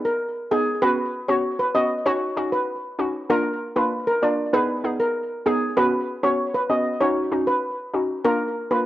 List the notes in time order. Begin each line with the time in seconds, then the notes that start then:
0.05 A#4
0.51 B3 D#4 G#4
0.82 B3 C#4 F#4 B4
1.28 B3 C#4 F#4 C#5
1.59 B4
1.75 B3 C#4 F#4 D#5
2.06 C#4 D#4 F#4 C#5
2.37 C#4 D#4 F#4
2.52 B4
2.99 C#4 D#4 F#4
3.29 A#3 D4 F4 A#4
3.76 A#3 D4 F4 B4
4.07 A#4
4.22 A#3 D4 F4 D5
4.53 B3 D#4 G#4 B4
4.84 B3 D#4 G#4
5.00 A#4
5.46 B3 D#4 G#4
5.77 B3 C#4 F#4 B4
6.23 B3 C#4 F#4 C#5
6.55 B4
6.70 B3 C#4 F#4 D#5
7.01 C#4 D#4 F#4 C#5
7.32 C#4 D#4 F#4
7.47 B4
7.93 C#4 D#4 F#4
8.24 A#3 D4 F4 A#4
8.71 A#3 D4 F4 B4